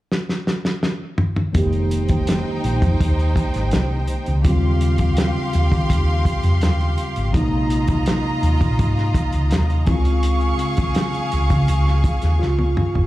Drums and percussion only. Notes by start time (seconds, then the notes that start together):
0.12 snare
0.29 snare
0.47 snare
0.65 snare
0.83 snare
1.18 mid tom
1.36 mid tom
1.55 kick, closed hi-hat
1.73 closed hi-hat
1.91 closed hi-hat
2.08 kick, closed hi-hat
2.27 snare, closed hi-hat
2.64 closed hi-hat
2.82 kick, closed hi-hat
3.00 kick, closed hi-hat
3.19 closed hi-hat
3.36 kick, closed hi-hat
3.54 snare, closed hi-hat
3.71 snare, closed hi-hat
4.08 closed hi-hat
4.26 closed hi-hat
4.44 kick, closed hi-hat
4.81 closed hi-hat
4.98 kick, closed hi-hat
5.17 snare, closed hi-hat
5.53 closed hi-hat
5.72 kick, closed hi-hat
5.90 kick, closed hi-hat
6.25 kick, closed hi-hat
6.43 closed hi-hat
6.61 snare, closed hi-hat
6.81 closed hi-hat
6.98 closed hi-hat
7.16 closed hi-hat
7.34 kick, closed hi-hat
7.70 closed hi-hat
7.87 kick, closed hi-hat
8.06 snare, closed hi-hat
8.43 closed hi-hat
8.61 kick, closed hi-hat
8.79 kick, closed hi-hat
8.97 snare, closed hi-hat
9.14 kick, closed hi-hat
9.32 closed hi-hat
9.51 snare, closed hi-hat
9.70 closed hi-hat
9.86 kick, closed hi-hat
10.05 closed hi-hat
10.23 closed hi-hat
10.41 closed hi-hat
10.59 closed hi-hat
10.77 kick, closed hi-hat
10.95 snare, closed hi-hat
11.14 closed hi-hat
11.32 closed hi-hat
11.50 kick, closed hi-hat
11.68 closed hi-hat
11.87 snare
12.04 kick, closed hi-hat
12.22 snare, closed hi-hat
12.42 snare
12.59 high tom
12.77 mid tom
12.95 floor tom